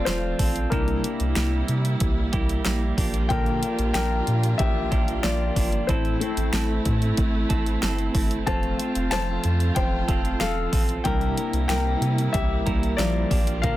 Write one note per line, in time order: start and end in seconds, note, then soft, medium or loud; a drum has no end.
0.00 0.69 A3 medium
0.00 0.74 A3 medium
0.00 0.69 C4 medium
0.00 0.74 C4 soft
0.00 0.09 F4 medium
0.00 0.69 F4 medium
0.00 0.74 A4 medium
0.00 0.74 D5 loud
0.00 0.74 F5 medium
0.05 0.34 E1 medium
0.05 0.39 F3 medium
0.05 0.40 C4 medium
0.05 0.39 F4 medium
0.05 0.69 F4 medium
0.05 0.73 C5 medium
0.05 snare loud
0.05 closed hi-hat medium
0.09 0.38 A4 medium
0.39 0.66 A#1 medium
0.39 0.72 C4 medium
0.39 0.72 F4 medium
0.39 0.72 A4 medium
0.39 kick medium
0.39 open hi-hat medium
0.56 closed hi-hat soft
0.70 0.98 C2 loud
0.70 1.04 C3 medium
0.70 2.96 C3 medium
0.70 1.04 G3 medium
0.70 5.85 G3 medium
0.70 1.65 A#3 medium
0.70 5.85 A#3 medium
0.70 1.04 A#3 medium
0.70 1.65 D4 soft
0.70 2.96 E4 medium
0.70 1.98 E4 medium
0.70 1.04 E4 loud
0.70 1.02 G4 medium
0.70 1.96 A#4 medium
0.70 kick loud
0.70 closed hi-hat medium
0.88 closed hi-hat soft
1.03 1.36 A#3 soft
1.03 1.36 E4 medium
1.03 1.36 G4 medium
1.03 closed hi-hat medium
1.20 1.34 C2 medium
1.20 closed hi-hat medium
1.36 1.63 C2 loud
1.36 2.65 G3 medium
1.36 2.35 A#3 medium
1.36 2.33 E4 medium
1.36 2.32 G4 medium
1.36 snare loud
1.36 closed hi-hat medium
1.68 1.95 C3 loud
1.68 closed hi-hat medium
1.85 closed hi-hat soft
2.00 2.28 C2 medium
2.00 kick loud
2.00 closed hi-hat medium
2.33 2.60 C2 loud
2.33 2.65 A#3 medium
2.33 2.66 E4 medium
2.33 2.65 G4 medium
2.33 kick medium
2.33 closed hi-hat medium
2.49 closed hi-hat soft
2.65 2.93 A#1 medium
2.65 2.98 G3 medium
2.65 2.98 A#3 medium
2.65 2.98 E4 medium
2.65 2.96 G4 medium
2.65 snare loud
2.65 closed hi-hat medium
2.97 3.51 A#1 medium
2.97 3.30 F3 soft
2.97 3.30 A#3 medium
2.97 3.31 D4 medium
2.97 5.86 F4 medium
2.97 3.30 G4 medium
2.97 kick medium
2.97 open hi-hat medium
3.14 closed hi-hat medium
3.29 3.63 A#2 medium
3.29 3.63 D3 medium
3.29 3.63 F3 medium
3.29 3.73 A#3 soft
3.29 3.63 A#3 medium
3.29 3.62 D4 medium
3.29 3.74 F4 medium
3.29 3.61 G4 medium
3.29 3.73 A4 soft
3.29 3.91 A#4 medium
3.29 3.92 G5 loud
3.29 kick loud
3.29 closed hi-hat medium
3.46 closed hi-hat soft
3.62 3.93 F3 soft
3.62 3.94 A#3 soft
3.62 3.95 D4 medium
3.62 3.95 G4 medium
3.62 closed hi-hat medium
3.79 3.92 A#1 medium
3.79 closed hi-hat medium
3.94 4.22 A#1 loud
3.94 4.91 F3 medium
3.94 4.92 A#3 medium
3.94 4.91 D4 medium
3.94 4.90 G4 medium
3.94 4.56 A#4 medium
3.94 4.61 G5 medium
3.94 snare loud
3.94 closed hi-hat medium
4.27 4.54 A#2 loud
4.27 closed hi-hat medium
4.43 closed hi-hat soft
4.58 4.86 A#1 loud
4.58 5.20 G4 medium
4.58 5.25 E5 medium
4.58 kick loud
4.58 closed hi-hat medium
4.91 5.18 A#1 loud
4.91 5.22 F3 soft
4.91 5.23 A#3 medium
4.91 5.24 D4 medium
4.91 5.24 G4 medium
4.91 kick medium
4.91 closed hi-hat medium
5.08 closed hi-hat soft
5.23 5.51 A#1 loud
5.23 5.56 F3 medium
5.23 5.57 A#3 medium
5.23 5.56 D4 medium
5.23 5.85 F4 medium
5.23 5.55 G4 medium
5.23 5.90 D5 medium
5.23 snare loud
5.23 closed hi-hat medium
5.56 5.83 G1 medium
5.56 5.89 F3 medium
5.56 5.89 A#3 medium
5.56 5.89 D4 medium
5.56 5.88 G4 medium
5.56 kick medium
5.56 open hi-hat medium
5.72 closed hi-hat soft
5.87 6.15 A1 loud
5.87 6.21 A2 medium
5.87 6.21 E3 medium
5.87 8.45 A3 medium
5.87 6.21 A3 medium
5.87 11.01 C4 medium
5.87 6.21 C4 medium
5.87 6.20 E4 medium
5.87 8.45 E4 medium
5.87 6.20 E4 loud
5.87 6.19 A4 loud
5.87 7.13 C5 medium
5.87 kick loud
5.87 closed hi-hat medium
6.05 closed hi-hat soft
6.20 6.64 A3 medium
6.20 6.51 A3 soft
6.20 6.64 C4 soft
6.20 6.52 C4 medium
6.20 6.54 E4 medium
6.20 6.64 E4 medium
6.20 6.53 A4 medium
6.20 closed hi-hat medium
6.37 6.50 A1 medium
6.37 closed hi-hat medium
6.52 6.80 A1 loud
6.52 7.52 A3 medium
6.52 7.51 C4 medium
6.52 7.49 E4 medium
6.52 7.49 A4 medium
6.52 snare loud
6.52 closed hi-hat medium
6.85 7.12 A2 medium
6.85 kick medium
6.85 closed hi-hat medium
7.02 closed hi-hat soft
7.17 7.44 A1 medium
7.17 kick loud
7.17 closed hi-hat medium
7.49 7.77 A1 loud
7.49 7.80 A3 soft
7.49 7.82 C4 soft
7.49 7.83 E4 medium
7.49 7.82 A4 medium
7.49 kick medium
7.49 closed hi-hat medium
7.66 closed hi-hat soft
7.82 8.09 G1 medium
7.82 8.14 A3 medium
7.82 8.15 C4 medium
7.82 8.14 E4 medium
7.82 8.13 A4 medium
7.82 snare loud
7.82 closed hi-hat medium
7.99 closed hi-hat soft
8.14 8.41 G1 medium
8.14 8.46 A3 soft
8.14 8.46 C4 medium
8.14 8.47 E4 medium
8.14 8.47 A4 medium
8.14 kick medium
8.14 open hi-hat medium
8.31 closed hi-hat soft
8.46 8.74 F1 loud
8.46 8.79 F3 medium
8.46 11.02 A3 medium
8.46 8.90 A3 soft
8.46 8.79 C4 medium
8.46 8.90 C4 soft
8.46 11.02 F4 medium
8.46 8.79 F4 medium
8.46 8.91 F4 medium
8.46 8.78 A4 medium
8.46 9.08 C5 medium
8.46 9.07 A5 medium
8.46 kick loud
8.46 closed hi-hat medium
8.63 closed hi-hat soft
8.79 9.11 C4 soft
8.79 9.12 F4 medium
8.79 9.11 A4 medium
8.79 closed hi-hat medium
8.95 9.09 F1 loud
8.95 closed hi-hat medium
9.11 9.38 F1 medium
9.11 10.08 F3 medium
9.11 10.10 C4 medium
9.11 10.08 F4 medium
9.11 10.07 A4 medium
9.11 9.72 C5 medium
9.11 9.72 A5 loud
9.11 snare loud
9.11 closed hi-hat medium
9.44 9.71 F2 medium
9.44 closed hi-hat medium
9.60 closed hi-hat soft
9.75 10.03 F1 medium
9.75 10.37 C5 medium
9.75 10.36 G5 medium
9.75 kick loud
9.75 closed hi-hat medium
10.08 10.35 F1 loud
10.08 10.40 C4 medium
10.08 10.41 F4 medium
10.08 10.40 A4 medium
10.08 kick medium
10.08 closed hi-hat medium
10.25 closed hi-hat soft
10.40 10.67 E1 medium
10.40 10.73 F3 medium
10.40 10.73 C4 medium
10.40 10.73 F4 medium
10.40 11.02 A4 medium
10.40 10.71 A4 medium
10.40 11.01 F5 medium
10.40 snare loud
10.40 closed hi-hat medium
10.72 10.99 A#1 medium
10.72 11.06 C4 medium
10.72 11.06 F4 medium
10.72 11.05 A4 medium
10.72 kick medium
10.72 open hi-hat medium
10.89 closed hi-hat medium
11.04 11.32 C2 loud
11.04 13.28 C3 medium
11.04 11.37 C3 medium
11.04 13.77 G3 medium
11.04 11.38 G3 medium
11.04 11.98 A#3 soft
11.04 13.77 A#3 medium
11.04 11.38 A#3 medium
11.04 11.98 D4 soft
11.04 13.29 E4 medium
11.04 11.98 E4 medium
11.04 11.37 E4 medium
11.04 11.66 A#4 medium
11.04 11.36 A#4 medium
11.04 11.66 G5 medium
11.04 kick loud
11.04 closed hi-hat medium
11.21 closed hi-hat soft
11.37 11.69 A#3 soft
11.37 11.70 E4 medium
11.37 11.69 A#4 medium
11.37 closed hi-hat medium
11.53 11.67 C2 medium
11.53 closed hi-hat medium
11.68 11.96 C2 medium
11.68 12.97 G3 medium
11.68 12.68 A#3 medium
11.68 12.66 E4 medium
11.68 12.30 A#4 medium
11.68 12.29 G5 medium
11.68 snare loud
11.68 closed hi-hat medium
11.72 12.65 A#4 medium
12.01 12.28 C3 medium
12.01 closed hi-hat medium
12.18 closed hi-hat soft
12.33 12.61 C2 loud
12.33 12.95 G4 medium
12.33 13.00 E5 medium
12.33 kick loud
12.33 closed hi-hat medium
12.66 12.93 C2 loud
12.66 12.98 A#3 soft
12.66 12.99 E4 medium
12.66 12.98 A#4 medium
12.66 kick medium
12.66 closed hi-hat medium
12.83 closed hi-hat soft
12.97 13.25 A#1 medium
12.97 13.59 F3 medium
12.97 13.30 G3 medium
12.97 13.31 A#3 medium
12.97 13.31 E4 medium
12.97 13.58 D5 medium
12.97 snare loud
12.97 closed hi-hat medium
13.01 13.30 A#4 medium
13.30 13.77 A#1 loud
13.30 13.62 F3 medium
13.30 13.63 A#3 medium
13.30 13.63 D4 medium
13.30 13.77 F4 medium
13.30 13.63 G4 medium
13.30 kick medium
13.30 open hi-hat medium
13.47 closed hi-hat medium
13.62 13.77 A#2 medium
13.62 13.77 D3 medium
13.62 13.77 F3 medium
13.62 13.77 A#3 medium
13.62 13.77 D4 medium
13.62 13.77 G4 medium
13.62 13.77 A#4 medium
13.62 13.77 F5 medium
13.62 kick loud
13.62 closed hi-hat medium